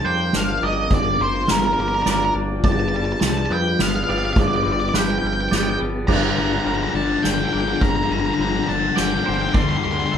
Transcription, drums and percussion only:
0.33 snare, ride
0.62 ride
0.90 kick, ride
1.48 snare, ride
2.06 snare, ride
2.64 kick, ride
3.21 snare, ride
3.79 snare, ride
4.07 ride
4.36 kick, ride
4.94 snare, ride
5.52 snare, ride
6.08 kick, crash
6.67 ride
7.24 snare, ride
7.54 ride
7.81 kick, ride
8.40 ride
8.97 snare, ride
9.54 kick, ride
10.13 ride

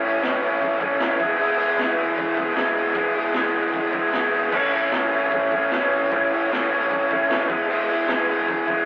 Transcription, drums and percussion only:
0.04 open hi-hat
0.23 snare, open hi-hat
0.42 open hi-hat
0.62 kick, open hi-hat
0.81 kick, open hi-hat
1.00 snare, open hi-hat
1.20 kick, open hi-hat
1.39 open hi-hat
1.59 open hi-hat
1.79 snare
1.98 open hi-hat
2.18 kick, open hi-hat
2.37 kick, open hi-hat
2.56 snare, open hi-hat
2.76 open hi-hat
2.94 kick, open hi-hat
3.15 open hi-hat
3.34 snare, open hi-hat
3.54 open hi-hat
3.74 kick, open hi-hat
3.93 kick, open hi-hat
4.13 snare, open hi-hat
4.33 open hi-hat
4.52 kick, crash
4.73 open hi-hat
4.92 snare, open hi-hat
5.13 open hi-hat
5.32 kick, open hi-hat
5.52 kick, open hi-hat
5.72 snare, open hi-hat
5.92 open hi-hat
6.12 kick, open hi-hat
6.32 open hi-hat
6.53 snare, open hi-hat
6.72 open hi-hat
6.91 kick, open hi-hat
7.11 kick, open hi-hat
7.31 snare, open hi-hat
7.49 kick, open hi-hat
7.69 open hi-hat
7.89 open hi-hat
8.08 snare, open hi-hat
8.29 open hi-hat
8.49 kick, open hi-hat
8.68 kick, open hi-hat

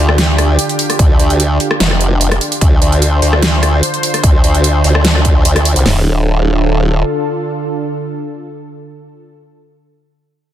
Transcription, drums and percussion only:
0.09 cross-stick
0.18 snare, closed hi-hat
0.38 cross-stick, closed hi-hat
0.59 closed hi-hat
0.69 closed hi-hat
0.79 open hi-hat
0.90 cross-stick, closed hi-hat
0.99 kick, closed hi-hat
1.20 closed hi-hat
1.30 closed hi-hat
1.40 closed hi-hat
1.60 open hi-hat
1.71 cross-stick
1.80 snare, closed hi-hat
1.91 cross-stick
2.01 closed hi-hat
2.21 closed hi-hat
2.32 cross-stick, closed hi-hat
2.41 open hi-hat
2.52 closed hi-hat
2.61 kick, closed hi-hat
2.82 closed hi-hat
2.92 closed hi-hat
3.02 closed hi-hat
3.22 open hi-hat
3.33 cross-stick
3.42 snare, closed hi-hat
3.63 cross-stick, closed hi-hat
3.83 closed hi-hat
3.94 closed hi-hat
4.03 open hi-hat
4.14 cross-stick, closed hi-hat
4.24 kick, closed hi-hat
4.44 closed hi-hat
4.55 closed hi-hat
4.64 closed hi-hat
4.84 open hi-hat
4.95 cross-stick
5.05 snare, closed hi-hat
5.15 cross-stick
5.25 kick, closed hi-hat
5.45 closed hi-hat
5.56 cross-stick, closed hi-hat
5.65 open hi-hat
5.76 closed hi-hat
5.86 snare, floor tom, open hi-hat

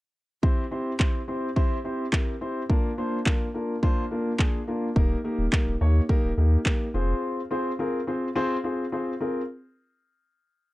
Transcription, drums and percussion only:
0.43 kick
1.00 kick, clap
1.56 kick
2.13 kick, clap
2.70 kick
3.26 kick, clap
3.83 kick
4.39 kick, clap
4.96 kick
5.53 kick, clap
6.09 kick
6.66 kick, clap

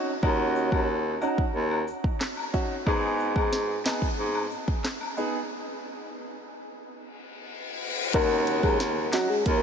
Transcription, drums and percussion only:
0.23 kick, high woodblock
0.56 cabasa
0.72 kick, high woodblock
1.22 cabasa, high woodblock
1.38 kick
1.71 high woodblock
1.88 cabasa
2.04 kick
2.21 cross-stick, snare, clap
2.37 high woodblock
2.54 kick, cabasa
2.87 kick, high woodblock
3.20 cabasa
3.36 kick, high woodblock
3.53 snare
3.85 snare, clap, cabasa, high woodblock
4.02 kick
4.35 high woodblock
4.51 cabasa
4.68 kick
4.85 cross-stick, snare, clap
5.01 high woodblock
5.17 cabasa
8.14 kick, closed hi-hat, high woodblock
8.47 closed hi-hat, cabasa
8.63 kick, high woodblock
8.80 snare, closed hi-hat
9.13 snare, clap, closed hi-hat, cabasa, high woodblock
9.46 kick, closed hi-hat

